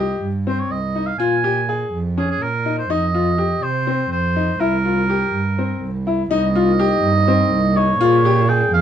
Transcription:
Already playing: C2 D#5
0.00 G4
0.23 G2
0.47 C4 C5
0.59 C#5
0.71 C2 D#5
0.95 D#4
1.06 F5
1.19 A#2 F4 G#5
1.44 G4
1.69 G#4
1.94 F2
2.18 C#4 G#4
2.30 G#4
2.42 A#2 A#4
2.66 D#4
2.78 C5
2.90 F2 D#4 D#5
3.14 F4
3.38 G4
3.63 C3 C5
3.87 C4
4.11 F2 C5
4.36 D#4
4.60 C2 E4 A#4
4.85 F4
5.10 G4
5.33 G2
5.58 C4
5.82 C2
6.07 E4
6.30 C2 C3 A#3 D#4 D#5
6.55 F4
6.79 G4
7.02 G2
7.28 C4
7.51 C2
7.76 D#4 C#5
8.00 A#2 C#3 F4 G#4
8.25 G4
8.49 G#4 G5
8.73 F2 F5

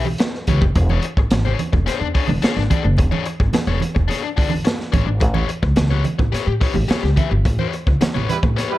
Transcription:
Already playing: B1
0.05 muted overdriven electric guitar stroke, high conga
0.18 muted overdriven electric guitar stroke, snare, closed hi-hat
0.35 snare
0.47 C#2 G4 B4 C#5, kick, closed hi-hat, high conga
0.62 F#1, muted overdriven electric guitar stroke, kick
0.75 E1, muted overdriven electric guitar stroke, kick, closed hi-hat
0.89 D4 G#4 C#5, high conga
1.02 muted overdriven electric guitar stroke, closed hi-hat
1.17 G#1, muted overdriven electric guitar stroke, kick
1.31 G#1, muted overdriven electric guitar stroke, snare, closed hi-hat, high conga
1.45 D4 G#4 C#5, muted conga, low conga
1.59 muted overdriven electric guitar stroke, closed hi-hat, high conga
1.73 E1, muted overdriven electric guitar stroke, kick, low conga
1.86 D4 G#4 C#5, muted upright bass stroke, snare, closed hi-hat, muted conga
2.01 E2, muted overdriven electric guitar stroke, muted conga
2.14 D4 G#4 C#5, kick, open hi-hat
2.28 E1, muted overdriven electric guitar stroke, high conga
2.42 D4 G#4 C#5, muted upright bass stroke, snare, closed hi-hat
2.56 G#1, muted overdriven electric guitar stroke, snare, muted conga
2.70 D4 G#4 D5, kick, closed hi-hat, high conga
2.84 F#1, muted overdriven electric guitar stroke
2.97 E1, muted overdriven electric guitar stroke, kick, closed hi-hat, muted conga
3.11 D4 G#4 C#5, high conga
3.26 muted overdriven electric guitar stroke, closed hi-hat
3.40 G#1, muted overdriven electric guitar stroke, kick
3.53 muted overdriven electric guitar stroke, muted upright bass stroke, snare, closed hi-hat, muted conga, high conga
3.67 E1 D4 G#4 C#5, low conga
3.80 muted overdriven electric guitar stroke, closed hi-hat, high conga
3.95 E1, muted overdriven electric guitar stroke, kick, low conga
4.08 D4 G#4 C#5, snare, closed hi-hat, muted conga
4.23 muted overdriven electric guitar stroke
4.37 G1 D4 G#4 D5, kick, open hi-hat
4.50 muted overdriven electric guitar stroke, high conga
4.65 muted overdriven electric guitar stroke, snare, closed hi-hat
4.79 snare, muted conga
4.92 G#1 D4 G#4 C#5, kick, closed hi-hat, high conga
5.06 G#1, muted overdriven electric guitar stroke
5.20 A1, muted overdriven electric guitar stroke, kick, closed hi-hat, muted conga
5.34 G4 B4 C#5, muted conga, high conga
5.49 muted overdriven electric guitar stroke, closed hi-hat
5.63 C#2, muted overdriven electric guitar stroke, kick
5.76 C#2, muted overdriven electric guitar stroke, snare, closed hi-hat, muted conga, high conga
5.91 G4 B4 C#5, low conga
6.04 muted overdriven electric guitar stroke, closed hi-hat, high conga
6.19 A1, muted overdriven electric guitar stroke, kick, low conga
6.32 G4 B4 C#5, muted upright bass stroke, snare, closed hi-hat
6.47 A2, muted overdriven electric guitar stroke
6.61 G4 B4 C#5, kick, open hi-hat
6.74 A1, muted overdriven electric guitar stroke, high conga
6.88 G4 B4 C#5, muted upright bass stroke, snare, closed hi-hat, muted conga
7.03 C#2, muted overdriven electric guitar stroke, snare, muted conga
7.16 G4 B4 E5, kick, closed hi-hat, high conga
7.31 G1, muted overdriven electric guitar stroke
7.45 A1, muted overdriven electric guitar stroke, kick, closed hi-hat
7.59 G4 B4 C#5, high conga
7.73 muted overdriven electric guitar stroke, closed hi-hat
7.87 C#2, muted overdriven electric guitar stroke, kick
8.01 muted overdriven electric guitar stroke, snare, closed hi-hat, high conga
8.14 A1 G4 B4 C#5, muted conga, low conga
8.28 G3 E4 B4, muted overdriven electric guitar stroke, closed hi-hat, high conga
8.43 A1, muted overdriven electric guitar stroke, kick, low conga
8.56 G4 B4 C#5, snare, closed hi-hat
8.71 G3 E4 B4, muted overdriven electric guitar stroke

